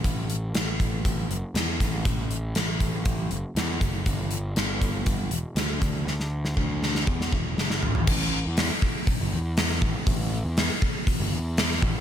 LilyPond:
<<
  \new Staff \with { instrumentName = "Picked electric bass" } { \clef bass \time 4/4 \key e \minor \tempo 4 = 120 a,,4 a,,4. fis,,16 r16 e,8 a,,8 | a,,4 a,,4. fis,,16 r16 e,8 fis,,8 | g,,4 g,,4. e,,16 r16 d,8 d,8 | d,4 d,4 e,8 e,,8 fis,,8 gis,,8 |
\key c \major a,,8. e,8 r4 g,,16 e,4 a,,16 r16 | a,,8. e,8 r4 g,,16 e,4 a,,16 r16 | }
  \new DrumStaff \with { instrumentName = "Drums" } \drummode { \time 4/4 <hh bd>8 hh8 <hh sn>8 <hh bd>8 <hh bd>8 hh8 <hh sn>8 <hh bd sn>8 | <hh bd>8 hh8 <hh sn>8 <hh bd>8 <hh bd>8 hh8 <hh sn>8 <hh bd>8 | <hh bd>8 hh8 <hh sn>8 <hh bd>8 <hh bd>8 hh8 <hh sn>8 <hh bd sn>8 | sn16 sn8 sn16 bd8 sn16 sn16 bd16 sn16 bd8 sn16 sn16 tomfh16 tomfh16 |
<cymc bd>4 <hho sn>8 bd8 <hho bd>4 <hho sn>16 sn16 bd8 | <hho bd>4 <hho sn>8 bd8 <hho bd>4 <hho sn>16 sn16 bd8 | }
>>